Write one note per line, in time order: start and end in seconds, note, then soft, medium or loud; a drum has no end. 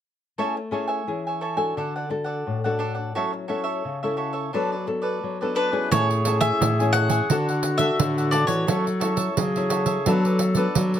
0.38 1.04 A3 medium
0.38 0.58 C#4 soft
0.38 0.58 E4 soft
0.38 0.59 G#4 soft
0.38 0.54 A4 medium
0.38 0.54 C#5 medium
0.38 0.54 E5 medium
0.38 0.55 G#5 medium
0.57 muted cavaquinho stroke soft
0.71 1.01 C#4 soft
0.71 1.01 E4 soft
0.71 1.01 G#4 medium
0.71 0.88 A4 soft
0.71 0.87 C#5 soft
0.71 0.87 E5 soft
0.71 0.86 G#5 soft
0.87 1.22 C#5 soft
0.87 1.22 E5 medium
0.87 1.22 G#5 medium
1.07 1.73 E3 medium
1.07 1.40 C#4 soft
1.07 1.40 E4 soft
1.07 1.40 G#4 soft
1.27 1.40 C#5 soft
1.27 1.41 E5 soft
1.27 1.41 G#5 soft
1.41 1.57 A4 soft
1.41 1.57 C#5 soft
1.41 1.57 E5 soft
1.41 1.56 G#5 soft
1.56 2.04 D4 soft
1.56 2.04 F#4 soft
1.56 2.05 A4 medium
1.56 1.75 C#5 soft
1.56 1.74 E5 soft
1.56 1.74 G#5 medium
1.77 2.43 D3 medium
1.77 1.93 D4 medium
1.77 1.93 A4 medium
1.77 1.93 D5 medium
1.77 1.94 F#5 medium
1.96 2.09 A4 soft
1.96 2.09 D5 soft
1.96 2.09 F#5 soft
2.10 2.57 D4 medium
2.10 2.57 F#4 soft
2.10 2.57 A4 soft
2.10 muted cavaquinho stroke soft
2.24 2.61 A4 soft
2.24 2.60 D5 soft
2.24 2.60 F#5 medium
2.47 3.12 A2 medium
2.64 3.11 D4 medium
2.64 3.11 F#4 medium
2.64 2.78 A4 soft
2.64 3.11 A4 medium
2.64 2.78 D5 soft
2.64 2.79 F#5 soft
2.79 2.96 D4 medium
2.79 2.94 A4 medium
2.79 2.94 D5 medium
2.79 2.93 F#5 medium
2.94 3.13 A4 soft
2.94 3.12 D5 soft
2.94 3.12 F#5 soft
3.15 3.81 F#3 medium
3.15 3.45 C#4 soft
3.15 3.45 E4 soft
3.15 3.31 F#4 medium
3.15 3.31 A4 medium
3.15 3.45 A4 soft
3.15 3.32 C#5 medium
3.15 3.32 E5 medium
3.33 muted cavaquinho stroke soft
3.48 3.82 C#4 soft
3.48 3.82 E4 soft
3.48 3.65 F#4 soft
3.48 3.64 A4 soft
3.48 3.82 A4 medium
3.48 3.63 C#5 soft
3.48 3.62 E5 soft
3.64 3.99 A4 soft
3.64 3.99 C#5 medium
3.64 3.99 E5 medium
3.85 4.50 C#3 medium
4.03 4.49 C#4 soft
4.03 4.49 E4 medium
4.03 4.16 A4 soft
4.03 4.49 A4 medium
4.03 4.16 C#5 soft
4.03 4.17 E5 soft
4.17 4.34 F#4 soft
4.17 4.33 A4 soft
4.17 4.32 C#5 soft
4.17 4.32 E5 soft
4.33 4.51 A4 soft
4.33 4.51 C#5 soft
4.33 4.50 E5 medium
4.53 5.20 F#3 medium
4.53 4.74 B3 medium
4.53 4.69 D4 medium
4.53 4.74 D4 soft
4.53 4.70 A4 medium
4.53 4.75 A4 medium
4.53 4.70 B4 medium
4.53 4.70 D5 medium
4.72 4.86 A4 soft
4.72 4.86 B4 soft
4.72 4.87 D5 soft
4.87 5.34 B3 medium
4.87 5.34 D4 soft
4.87 5.34 A4 medium
4.87 muted cavaquinho stroke soft
5.02 5.38 A4 soft
5.02 5.37 B4 soft
5.02 5.37 D5 medium
5.23 5.89 F#3 medium
5.41 5.70 B3 medium
5.41 5.70 D4 medium
5.41 5.55 A4 soft
5.41 5.70 A4 medium
5.41 5.55 B4 soft
5.41 5.55 D5 soft
5.55 5.72 D4 medium
5.55 5.71 A4 medium
5.55 5.70 B4 medium
5.55 5.89 B4 medium
5.55 5.69 D5 medium
5.71 6.20 C#4 medium
5.71 6.20 E4 medium
5.71 6.20 G#4 medium
5.71 5.89 A4 soft
5.71 5.89 B4 soft
5.71 5.89 D5 soft
5.91 6.50 A2 medium
5.91 6.58 A3 soft
5.91 7.31 G#4 medium
5.91 6.08 A4 medium
5.91 6.40 C#5 medium
5.91 6.08 C#5 medium
5.91 6.08 E5 medium
5.91 6.08 G#5 medium
5.91 pandeiro medium
6.10 muted cavaquinho stroke soft
6.10 pandeiro soft
6.25 6.73 C#4 soft
6.25 6.73 E4 soft
6.25 6.73 G#4 medium
6.25 6.42 A4 soft
6.25 6.42 C#5 soft
6.25 6.41 E5 medium
6.25 6.40 G#5 medium
6.25 pandeiro medium
6.41 6.77 C#5 medium
6.41 6.90 E5 medium
6.41 6.76 E5 medium
6.41 6.76 G#5 medium
6.41 pandeiro medium
6.61 7.20 A2 medium
6.61 7.27 E3 soft
6.61 pandeiro medium
6.79 7.26 C#4 medium
6.79 7.26 E4 soft
6.79 7.26 G#4 medium
6.79 6.93 C#5 soft
6.79 6.93 E5 soft
6.79 6.94 G#5 soft
6.79 pandeiro soft
6.93 7.11 A4 soft
6.93 7.10 C#5 soft
6.93 7.10 E5 soft
6.93 7.83 F#5 medium
6.93 7.09 G#5 medium
6.93 pandeiro medium
7.10 7.28 C#5 soft
7.10 7.28 E5 medium
7.10 7.28 G#5 medium
7.10 pandeiro medium
7.30 7.96 D3 medium
7.30 7.89 D3 medium
7.30 7.77 D4 medium
7.30 7.47 D4 medium
7.30 8.69 F#4 medium
7.30 7.77 F#4 soft
7.30 7.77 A4 medium
7.30 7.47 A4 medium
7.30 7.47 D5 medium
7.30 7.47 F#5 medium
7.30 pandeiro medium
7.49 7.64 A4 soft
7.49 7.64 D5 soft
7.49 7.64 F#5 soft
7.49 pandeiro soft
7.63 muted cavaquinho stroke soft
7.63 pandeiro medium
7.78 8.27 D4 medium
7.78 8.28 F#4 medium
7.78 8.28 A4 medium
7.78 8.15 A4 soft
7.78 8.15 D5 soft
7.78 8.31 E5 medium
7.78 8.14 F#5 medium
7.78 pandeiro medium
7.99 8.66 A2 soft
7.99 8.44 D3 medium
7.99 pandeiro medium
8.17 8.31 A4 soft
8.17 8.32 D5 soft
8.17 8.32 F#5 medium
8.17 pandeiro soft
8.31 8.49 D4 medium
8.31 8.54 D4 soft
8.31 8.54 F#4 medium
8.31 8.47 A4 medium
8.31 8.54 A4 medium
8.31 8.47 D5 medium
8.31 8.46 D5 medium
8.31 8.46 F#5 medium
8.31 pandeiro medium
8.47 8.65 E3 medium
8.47 8.66 A4 soft
8.47 9.49 C#5 medium
8.47 8.65 D5 soft
8.47 8.65 F#5 soft
8.47 pandeiro medium
8.67 9.28 F#3 medium
8.67 9.35 F#3 soft
8.67 8.89 C#4 soft
8.67 8.90 E4 medium
8.67 8.84 F#4 medium
8.67 9.36 A4 medium
8.67 8.84 A4 medium
8.67 8.90 A4 medium
8.67 8.85 C#5 medium
8.67 8.85 E5 medium
8.67 pandeiro medium
8.86 muted cavaquinho stroke soft
8.86 pandeiro soft
9.00 9.35 C#4 soft
9.00 9.36 E4 medium
9.00 9.18 F#4 soft
9.00 9.16 A4 soft
9.00 9.36 A4 medium
9.00 9.16 C#5 medium
9.00 9.15 E5 medium
9.00 pandeiro medium
9.16 9.52 A4 medium
9.16 9.52 C#5 medium
9.16 9.52 E5 medium
9.16 pandeiro medium
9.37 10.04 C#3 medium
9.37 9.97 F#3 medium
9.37 10.07 G#4 medium
9.37 pandeiro medium
9.56 10.02 C#4 soft
9.56 10.02 E4 medium
9.56 9.69 A4 soft
9.56 9.69 C#5 soft
9.56 9.70 E5 soft
9.56 pandeiro soft
9.69 9.87 F#4 medium
9.69 9.86 A4 soft
9.69 9.86 C#5 medium
9.69 9.84 E5 medium
9.69 pandeiro medium
9.86 10.04 A4 medium
9.86 10.04 C#5 medium
9.86 10.04 E5 medium
9.86 pandeiro medium
10.06 10.73 F#3 medium
10.06 10.66 F#3 medium
10.06 10.40 B3 medium
10.06 10.23 D4 medium
10.06 10.40 D4 medium
10.06 11.00 A4 medium
10.06 10.24 A4 medium
10.06 10.40 A4 medium
10.06 10.23 B4 medium
10.06 10.24 D5 medium
10.06 pandeiro medium
10.25 10.39 A4 soft
10.25 10.39 B4 soft
10.25 10.39 D5 soft
10.25 pandeiro soft
10.39 muted cavaquinho stroke soft
10.39 pandeiro medium
10.55 11.00 B3 medium
10.55 11.00 D4 medium
10.55 11.00 A4 medium
10.55 10.92 A4 soft
10.55 10.91 B4 medium
10.55 10.91 D5 medium
10.55 pandeiro medium
10.75 11.00 F#3 medium
10.75 11.00 F#3 soft
10.75 pandeiro medium
10.94 11.00 B4 soft
10.94 11.00 D5 soft
10.94 pandeiro soft